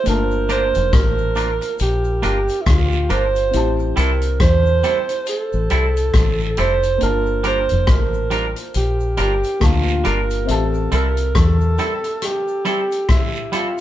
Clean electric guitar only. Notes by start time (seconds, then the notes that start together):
0.49 A#3 D4 F4 A#4
1.36 A#3 D4 F4 A#4
1.61 muted clean electric guitar stroke
2.22 A#3 D4 F4 A#4
3.10 A#3 D4 F4 A#4
3.96 G3 C4 E4 A4
4.84 G3 C4 E4 A4
5.09 muted clean electric guitar stroke
5.70 G3 C4 E4 A4
6.58 G3 C4 E4 A4
7.44 G3 D4 F4 A#4
8.31 G3 D4 F4 A#4
8.56 muted clean electric guitar stroke
9.17 G3 D4 F4 A#4
10.04 G3 D4 F4 A#4
10.92 G3 C4 E4 A4
11.79 G3 C4 E4 A4
12.04 muted clean electric guitar stroke
12.65 G3 C4 E4 A4
13.52 G3 C4 E4 A4